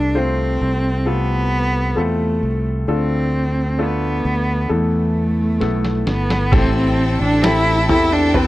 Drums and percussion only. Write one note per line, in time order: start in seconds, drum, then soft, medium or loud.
5.61 snare soft
5.85 snare soft
6.07 snare medium
6.30 snare medium
6.52 kick loud
6.52 floor tom loud
6.52 crash medium
7.44 snare loud
7.89 floor tom medium
8.34 floor tom medium